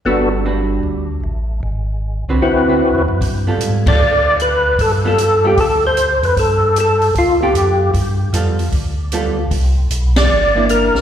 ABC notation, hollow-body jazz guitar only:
X:1
M:4/4
L:1/8
Q:"Swing" 1/4=152
K:G
V:1 name="Hollow-body jazz guitar"
[G,DFB]2 [G,DFB]3 z3 | z3 [D,CFB] z [D,CFB] z2 | [K:Gmix] z [G,B,FA]2 [G,B,FA] z4 | z [G,B,FA] z [G,B,FA] z4 |
z4 z [B,FA]3 | z2 [G,B,FA] z3 [G,B,FA] z | z4 z [_B,DE]3 |]